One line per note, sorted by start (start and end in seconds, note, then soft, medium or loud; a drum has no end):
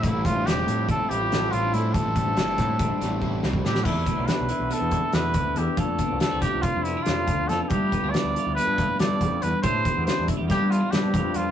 0.00 0.45 A2 medium
0.00 0.47 E3 medium
0.00 0.45 F3 medium
0.00 0.27 G3 medium
0.00 0.48 C4 medium
0.00 kick medium
0.00 closed hi-hat medium
0.04 0.13 A1 medium
0.04 1.10 A2 medium
0.04 0.25 A3 medium
0.04 0.46 A3 medium
0.04 0.47 C4 medium
0.04 0.27 E4 medium
0.04 0.47 F4 loud
0.13 0.43 A1 medium
0.25 0.69 G3 medium
0.25 0.36 C4 medium
0.25 0.48 F4 medium
0.25 kick medium
0.25 closed hi-hat medium
0.35 0.46 D4 medium
0.45 0.65 E1 medium
0.45 1.31 A2 medium
0.45 1.29 F3 medium
0.45 1.93 F3 medium
0.45 1.11 A3 medium
0.45 0.57 C4 medium
0.45 1.09 C4 medium
0.45 0.88 C4 soft
0.45 1.08 F4 medium
0.45 0.89 G4 medium
0.45 snare medium
0.45 closed hi-hat medium
0.57 0.68 E4 medium
0.67 0.90 A2 medium
0.67 1.11 G3 medium
0.67 0.78 C4 medium
0.67 closed hi-hat medium
0.79 0.89 E4 medium
0.89 0.98 A1 medium
0.89 1.52 C4 medium
0.89 1.00 C4 medium
0.89 1.11 A4 medium
0.89 kick medium
0.89 closed hi-hat medium
1.00 1.21 E4 medium
1.09 1.48 A1 medium
1.09 1.74 A2 medium
1.09 2.16 G3 medium
1.09 1.31 A3 medium
1.09 1.31 C4 medium
1.09 1.31 F4 medium
1.09 1.53 G4 medium
1.09 closed hi-hat medium
1.21 1.31 F4 medium
1.31 1.72 F3 medium
1.31 1.53 A3 medium
1.31 1.51 C4 medium
1.31 1.50 F4 medium
1.31 1.43 A4 medium
1.31 snare medium
1.31 closed hi-hat medium
1.43 1.64 F4 medium
1.51 1.72 A1 medium
1.51 1.74 A3 medium
1.51 1.74 C4 medium
1.51 1.93 C4 medium
1.51 1.74 F4 medium
1.51 1.75 F4 medium
1.51 closed hi-hat medium
1.64 1.74 D4 medium
1.73 1.92 A2 medium
1.73 1.93 A2 medium
1.73 1.94 A2 medium
1.73 1.94 F3 medium
1.73 1.94 A3 medium
1.73 1.95 C4 medium
1.73 1.94 C4 loud
1.73 1.95 E4 medium
1.73 1.95 F4 medium
1.73 closed hi-hat medium
1.93 2.04 A1 medium
1.93 2.35 A2 medium
1.93 3.02 A2 medium
1.93 2.36 E3 medium
1.93 2.16 A3 medium
1.93 2.37 A3 medium
1.93 2.36 C4 medium
1.93 2.37 E4 loud
1.93 3.43 A4 medium
1.93 kick medium
1.93 closed hi-hat medium
2.05 2.34 A1 medium
2.16 2.59 G3 medium
2.16 2.27 C4 medium
2.16 kick medium
2.16 closed hi-hat medium
2.25 2.37 D4 medium
2.36 2.56 G1 medium
2.36 3.22 A2 medium
2.36 3.21 E3 medium
2.36 3.84 E3 medium
2.36 3.02 A3 medium
2.36 2.48 C4 medium
2.36 3.00 C4 medium
2.36 2.81 C4 medium
2.36 2.99 E4 medium
2.36 snare loud
2.36 closed hi-hat medium
2.47 2.58 E4 medium
2.58 2.81 A2 medium
2.58 3.01 G3 medium
2.58 2.70 C4 medium
2.58 kick medium
2.58 snare soft
2.58 closed hi-hat medium
2.69 2.80 E4 medium
2.79 2.89 A1 medium
2.79 2.90 C4 medium
2.79 3.85 C4 medium
2.79 kick medium
2.79 closed hi-hat medium
2.91 3.12 D4 medium
3.00 3.40 A1 medium
3.00 3.44 E2 medium
3.00 3.87 G3 medium
3.00 3.22 A3 medium
3.00 3.22 C4 medium
3.00 3.23 E4 medium
3.00 snare soft
3.00 closed hi-hat medium
3.11 3.22 E4 medium
3.22 3.44 A2 medium
3.22 3.63 E3 medium
3.22 3.45 A3 medium
3.22 3.43 C4 medium
3.22 3.42 E4 medium
3.22 3.33 G4 medium
3.22 kick medium
3.33 3.55 E4 medium
3.43 3.63 C2 medium
3.43 3.65 G2 medium
3.43 3.64 A3 medium
3.43 3.64 C4 medium
3.43 3.65 E4 medium
3.43 snare medium
3.53 3.65 C4 medium
3.53 kick medium
3.64 3.86 F2 medium
3.64 3.85 A2 medium
3.64 3.84 A2 medium
3.64 3.85 E3 medium
3.64 3.86 A3 medium
3.64 3.85 A3 medium
3.64 3.86 C4 medium
3.64 3.86 E4 medium
3.64 3.86 G4 medium
3.64 snare medium
3.75 snare medium
3.84 4.06 E2 medium
3.84 5.55 E2 medium
3.84 4.07 D4 soft
3.84 4.28 E4 medium
3.84 4.08 E4 medium
3.84 kick medium
3.84 crash medium
4.06 4.19 B3 medium
4.06 6.00 D4 medium
4.06 kick medium
4.06 closed hi-hat medium
4.18 4.28 B1 medium
4.18 4.29 C4 medium
4.27 5.14 A3 soft
4.27 4.50 D4 medium
4.27 4.74 B4 medium
4.27 snare medium
4.27 closed hi-hat medium
4.40 4.50 B1 medium
4.49 4.92 E4 medium
4.49 4.58 E4 medium
4.49 closed hi-hat medium
4.59 4.70 B1 medium
4.59 4.71 E4 medium
4.70 5.35 B2 medium
4.70 4.82 B3 medium
4.70 5.16 A4 medium
4.70 closed hi-hat medium
4.80 5.01 E2 medium
4.80 5.03 D4 medium
4.91 5.56 E4 medium
4.91 kick medium
4.91 closed hi-hat medium
5.02 5.14 E4 medium
5.13 5.34 E2 medium
5.13 5.77 A3 medium
5.13 5.25 D4 medium
5.13 5.59 B4 medium
5.13 snare medium
5.13 closed hi-hat medium
5.26 5.47 C4 medium
5.34 5.55 D2 medium
5.34 5.76 E3 medium
5.34 kick medium
5.34 closed hi-hat medium
5.46 5.58 D4 medium
5.56 5.76 E2 medium
5.56 5.67 E2 medium
5.56 5.68 B3 medium
5.56 5.77 E4 medium
5.56 5.81 G4 medium
5.56 closed hi-hat medium
5.68 5.76 D4 medium
5.77 7.49 F2 medium
5.77 5.98 F2 medium
5.77 6.00 D4 medium
5.77 6.44 F4 medium
5.77 6.20 A4 medium
5.77 kick medium
5.77 closed hi-hat medium
5.98 6.11 B3 medium
5.98 6.86 D4 soft
5.98 kick medium
5.98 closed hi-hat medium
6.09 6.21 C2 medium
6.09 6.21 C4 medium
6.20 6.31 G3 soft
6.20 6.43 D4 medium
6.20 6.41 A4 medium
6.20 snare medium
6.20 closed hi-hat medium
6.31 6.43 C2 medium
6.31 7.07 A3 soft
6.41 6.54 E4 medium
6.41 7.50 F4 medium
6.41 6.63 G4 medium
6.41 kick medium
6.41 snare soft
6.41 closed hi-hat medium
6.53 6.64 C2 medium
6.53 6.64 F4 medium
6.62 7.29 C3 medium
6.62 6.76 C4 medium
6.62 6.85 F4 medium
6.62 kick medium
6.62 closed hi-hat medium
6.76 6.95 F2 medium
6.76 6.97 D4 medium
6.83 6.97 B3 medium
6.83 7.04 E4 medium
6.83 closed hi-hat medium
6.97 7.72 D4 soft
6.97 7.08 E4 medium
7.02 7.50 F4 medium
7.02 closed hi-hat medium
7.06 7.28 F2 medium
7.06 7.70 A3 medium
7.06 7.19 D4 medium
7.06 snare medium
7.18 7.40 C4 medium
7.27 7.48 D2 medium
7.27 7.69 F3 medium
7.27 kick medium
7.27 closed hi-hat medium
7.41 7.51 D4 medium
7.49 7.60 F2 loud
7.49 7.69 F2 medium
7.49 7.61 B3 medium
7.49 7.70 F4 medium
7.49 7.63 A4 medium
7.49 snare soft
7.49 closed hi-hat soft
7.62 7.72 D4 medium
7.62 7.70 A4 medium
7.68 7.91 G2 medium
7.68 7.94 E4 medium
7.68 8.12 G4 medium
7.68 kick medium
7.68 closed hi-hat medium
7.73 8.56 G2 medium
7.73 8.37 F4 medium
7.92 8.04 B3 medium
7.92 kick medium
7.92 closed hi-hat medium
8.03 8.13 D2 medium
8.03 8.15 C4 medium
8.03 9.64 D4 soft
8.10 8.54 D5 medium
8.10 closed hi-hat medium
8.14 9.63 B3 soft
8.14 8.36 D4 medium
8.14 snare medium
8.24 8.35 D2 medium
8.36 8.45 E4 medium
8.36 8.79 F4 medium
8.36 closed hi-hat medium
8.46 8.56 D2 medium
8.46 8.57 E4 medium
8.55 9.00 G2 medium
8.55 8.69 B3 medium
8.55 8.96 B4 medium
8.55 closed hi-hat medium
8.67 8.87 G2 medium
8.67 8.90 D4 medium
8.78 9.63 F4 medium
8.78 kick medium
8.78 closed hi-hat medium
8.90 9.01 E4 medium
8.99 9.22 E2 medium
8.99 9.22 G2 medium
8.99 9.12 D4 medium
8.99 9.44 D5 medium
8.99 snare medium
8.99 closed hi-hat medium
9.12 9.33 C4 medium
9.21 9.41 F2 loud
9.21 9.42 F2 medium
9.21 kick medium
9.21 closed hi-hat medium
9.33 9.44 D4 medium
9.42 9.53 E2 medium
9.42 9.64 G2 medium
9.42 9.54 B3 medium
9.42 9.62 B4 medium
9.42 closed hi-hat medium
9.54 9.65 D4 medium
9.62 9.84 A2 medium
9.62 10.50 A2 medium
9.62 9.86 E4 medium
9.62 10.28 G4 medium
9.62 10.03 C5 medium
9.62 kick medium
9.62 closed hi-hat medium
9.85 9.97 B3 medium
9.85 10.48 C4 soft
9.85 kick medium
9.85 closed hi-hat medium
9.97 10.07 E2 medium
9.97 10.08 C4 medium
10.06 10.91 G3 soft
10.06 10.30 D4 medium
10.06 10.27 C5 medium
10.06 snare medium
10.06 closed hi-hat medium
10.19 10.28 E2 medium
10.28 10.37 E4 medium
10.28 10.39 E4 medium
10.28 kick medium
10.28 closed hi-hat medium
10.37 10.49 E2 medium
10.37 10.51 E4 medium
10.37 10.48 G4 medium
10.47 11.34 G2 medium
10.47 10.60 G2 medium
10.47 10.61 B3 medium
10.47 11.13 F4 medium
10.47 10.72 G4 loud
10.47 kick medium
10.47 snare soft
10.47 closed hi-hat medium
10.61 10.81 G2 medium
10.61 10.83 D4 medium
10.70 10.81 B3 medium
10.70 10.93 F4 medium
10.70 closed hi-hat medium
10.81 11.51 D4 soft
10.81 10.93 E4 medium
10.91 11.15 G2 loud
10.91 11.51 B3 medium
10.91 11.04 D4 medium
10.91 11.38 G4 medium
10.91 snare medium
10.91 closed hi-hat medium
11.03 11.24 C4 medium
11.14 11.33 F2 medium
11.14 11.51 F4 medium
11.14 kick medium
11.14 closed hi-hat medium
11.25 11.35 D4 medium
11.34 11.45 F2 medium
11.34 11.51 G2 medium
11.34 11.46 B3 medium
11.34 11.51 F4 medium
11.34 closed hi-hat medium
11.47 11.51 D4 medium